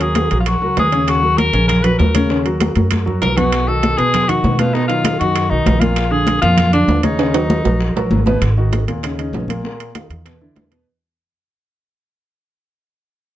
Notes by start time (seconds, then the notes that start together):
Already playing: D#2
0.00 F#3 F#4 G#4 A#4, high bongo, high conga, high timbale
0.15 high bongo, high conga, high timbale, low timbale
0.31 A#1 F#3 F#4 A#4, high bongo, high conga, high timbale
0.41 F4
0.46 F#4, high bongo, high conga, high timbale
0.62 C#2 F#3 F#4 A#4, high conga
0.77 D#2 G#4, high bongo, low bongo, high conga, high timbale, low timbale
0.92 C#3 C#4 C#5, high bongo, high timbale
1.08 F#4, high bongo, high conga, high timbale
1.22 F#3 F#4 A#4, high bongo, high conga
1.37 A#4, high bongo, high conga, high timbale, low timbale
1.53 A#1 C#3 C#4 C#5, high bongo, high conga, high timbale
1.68 A#4, high bongo, high conga, low conga, high timbale
1.83 F#3 F#4 A#4 B4, high conga, low conga, high timbale
1.99 D#2 A#4, high bongo, low bongo, high conga, low timbale
2.14 C#3 C#4 C#5, high bongo, high conga, high timbale
2.30 C#3 C#4 C#5, high bongo, high conga
2.45 F#3 F#4 A#4, high bongo, high conga, high timbale
2.60 high bongo, high conga, high timbale, low timbale
2.76 F#2 F#3 F#4 A#4, high bongo, high conga, high timbale
2.91 high bongo, high conga, high timbale
3.06 F#3 F#4 A#4, low conga
3.22 B1 A#4, high bongo, low bongo, low conga, high timbale, low timbale
3.37 B2 B3 F#4 B4, high bongo, low conga, high timbale
3.52 high bongo, high timbale
3.67 D#3 D#4 F#4 A4, high bongo, high conga
3.83 high bongo, high conga, high timbale, low timbale
3.97 B2 B3 G#4 B4, high bongo, high conga, high timbale
4.14 high bongo, high conga, low conga, high timbale
4.28 D#3 D#4 F#4, high conga, low conga, high timbale
4.44 B2, high bongo, low bongo, high conga, low timbale
4.59 B2 B3 F4 B4, high bongo, high conga, high timbale
4.74 B2 B3 D#4 B4, high bongo, high conga
4.88 D#3 F#3 D#4 F4, high bongo, high conga, high timbale
5.05 high bongo, high conga, high timbale, low timbale
5.20 F#2 D#3 D#4 F#4, high bongo, high conga, high timbale
5.36 high bongo, high conga, high timbale
5.50 B1 D#3 D#4 F#4, high conga
5.66 A#1, high bongo, low bongo, high conga, high timbale, low timbale
5.80 A#2 A#3 F4 A#4, high bongo, high conga, high timbale
5.96 high bongo, high timbale
6.11 D3 D4 F4 G#4, high bongo, high conga
6.27 high bongo, high conga, high timbale, low timbale
6.41 F2 A#2 A#3 F4 A#4, high bongo, high conga, high timbale
6.57 high bongo, high conga, low conga, high timbale
6.73 D3 D4 F4, high conga, high timbale
6.88 D#2, high bongo, low bongo, high conga, low timbale
7.03 C#3 C#4 D#4 C#5, high bongo, high conga, high timbale
7.18 C#3 C#4 C#5, high bongo, high conga, high timbale
7.34 F#3 F#4 A#4, high bongo, high conga, high timbale
7.50 high bongo, high conga, low timbale
7.64 A#1 F#3 F#4 A#4, high bongo, high conga, low timbale
7.81 high bongo, high conga
7.96 A#1 F#3 F#4 A#4, high conga, low timbale
8.11 G#1, high bongo, low bongo, high conga
8.26 B2 B3 B4, high bongo, high conga, low timbale
8.42 G#1, high bongo, high conga, high timbale
8.57 D#3 D#4 F#4, high bongo, high conga
8.72 high bongo, high conga, high timbale, low timbale
8.88 D#2 A#2 A#3 A#4, high bongo, high conga, high timbale
9.03 C#3 C#4 D#4, high bongo, high conga, high timbale
9.18 C#3 C#4 D#4, high conga, high timbale
9.33 A#1, high bongo, low bongo, high conga, low timbale
9.48 A#2 A#3 A#4, high bongo, high conga, high timbale
9.64 A#2 A#3 A#4, high bongo, high conga
9.80 high bongo, high conga, high timbale
9.95 D#3 D#4 F4, high bongo, high conga, high timbale, low timbale
10.10 E2, high bongo, high conga, high timbale
10.25 B2 B3 B4, high bongo, high conga, high timbale
10.41 D3 D4 E4, high conga
10.56 E2, high bongo, low bongo, high conga, high timbale, low timbale
10.71 B2 B3 B4, high bongo, high timbale